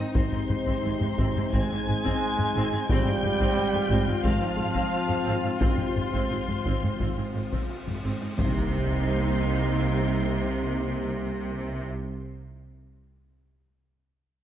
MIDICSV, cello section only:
0, 0, Header, 1, 2, 480
1, 0, Start_track
1, 0, Key_signature, -3, "minor"
1, 0, Tempo, 678733
1, 117, Time_signature, 4, 2, 24, 8
1, 3477, Tempo, 692841
1, 5877, Tempo, 680272
1, 10151, End_track
2, 0, Start_track
2, 0, Title_t, "Cello section"
2, 0, Program_c, 0, 48
2, 109, Note_on_c, 0, 44, 78
2, 159, Note_off_c, 0, 44, 0
2, 232, Note_on_c, 0, 44, 58
2, 281, Note_off_c, 0, 44, 0
2, 355, Note_on_c, 0, 44, 52
2, 404, Note_off_c, 0, 44, 0
2, 475, Note_on_c, 0, 44, 85
2, 524, Note_off_c, 0, 44, 0
2, 604, Note_on_c, 0, 44, 65
2, 651, Note_off_c, 0, 44, 0
2, 723, Note_on_c, 0, 44, 59
2, 771, Note_off_c, 0, 44, 0
2, 846, Note_on_c, 0, 44, 88
2, 895, Note_off_c, 0, 44, 0
2, 971, Note_on_c, 0, 44, 69
2, 1019, Note_off_c, 0, 44, 0
2, 1088, Note_on_c, 0, 44, 84
2, 1136, Note_off_c, 0, 44, 0
2, 1215, Note_on_c, 0, 44, 70
2, 1262, Note_off_c, 0, 44, 0
2, 1334, Note_on_c, 0, 44, 65
2, 1380, Note_off_c, 0, 44, 0
2, 1448, Note_on_c, 0, 44, 90
2, 1496, Note_off_c, 0, 44, 0
2, 1689, Note_on_c, 0, 44, 64
2, 1736, Note_off_c, 0, 44, 0
2, 1809, Note_on_c, 0, 44, 97
2, 1856, Note_off_c, 0, 44, 0
2, 1928, Note_on_c, 0, 44, 65
2, 1975, Note_off_c, 0, 44, 0
2, 2050, Note_on_c, 0, 44, 102
2, 2097, Note_off_c, 0, 44, 0
2, 2172, Note_on_c, 0, 44, 78
2, 2218, Note_off_c, 0, 44, 0
2, 2285, Note_on_c, 0, 44, 74
2, 2332, Note_off_c, 0, 44, 0
2, 2404, Note_on_c, 0, 44, 115
2, 2451, Note_off_c, 0, 44, 0
2, 2523, Note_on_c, 0, 44, 74
2, 2570, Note_off_c, 0, 44, 0
2, 2644, Note_on_c, 0, 44, 74
2, 2690, Note_off_c, 0, 44, 0
2, 2762, Note_on_c, 0, 44, 105
2, 2809, Note_off_c, 0, 44, 0
2, 2883, Note_on_c, 0, 44, 78
2, 2930, Note_off_c, 0, 44, 0
2, 3002, Note_on_c, 0, 44, 103
2, 3049, Note_off_c, 0, 44, 0
2, 3125, Note_on_c, 0, 44, 79
2, 3171, Note_off_c, 0, 44, 0
2, 3245, Note_on_c, 0, 44, 76
2, 3291, Note_off_c, 0, 44, 0
2, 3363, Note_on_c, 0, 44, 90
2, 3410, Note_off_c, 0, 44, 0
2, 3606, Note_on_c, 0, 44, 68
2, 3652, Note_off_c, 0, 44, 0
2, 3725, Note_on_c, 0, 44, 83
2, 3771, Note_off_c, 0, 44, 0
2, 3845, Note_on_c, 0, 44, 61
2, 3891, Note_off_c, 0, 44, 0
2, 3961, Note_on_c, 0, 44, 75
2, 4008, Note_off_c, 0, 44, 0
2, 4086, Note_on_c, 0, 44, 57
2, 4132, Note_off_c, 0, 44, 0
2, 4200, Note_on_c, 0, 44, 53
2, 4247, Note_off_c, 0, 44, 0
2, 4321, Note_on_c, 0, 44, 84
2, 4369, Note_off_c, 0, 44, 0
2, 4444, Note_on_c, 0, 44, 62
2, 4491, Note_off_c, 0, 44, 0
2, 4561, Note_on_c, 0, 44, 57
2, 4608, Note_off_c, 0, 44, 0
2, 4684, Note_on_c, 0, 44, 75
2, 4731, Note_off_c, 0, 44, 0
2, 4801, Note_on_c, 0, 44, 55
2, 4848, Note_off_c, 0, 44, 0
2, 4919, Note_on_c, 0, 44, 68
2, 4967, Note_off_c, 0, 44, 0
2, 5042, Note_on_c, 0, 44, 54
2, 5089, Note_off_c, 0, 44, 0
2, 5162, Note_on_c, 0, 44, 54
2, 5209, Note_off_c, 0, 44, 0
2, 5283, Note_on_c, 0, 44, 66
2, 5330, Note_off_c, 0, 44, 0
2, 5524, Note_on_c, 0, 44, 54
2, 5571, Note_off_c, 0, 44, 0
2, 5640, Note_on_c, 0, 44, 65
2, 5688, Note_off_c, 0, 44, 0
2, 5757, Note_on_c, 0, 44, 50
2, 5805, Note_off_c, 0, 44, 0
2, 5876, Note_on_c, 0, 48, 80
2, 8335, Note_off_c, 0, 48, 0
2, 10151, End_track
0, 0, End_of_file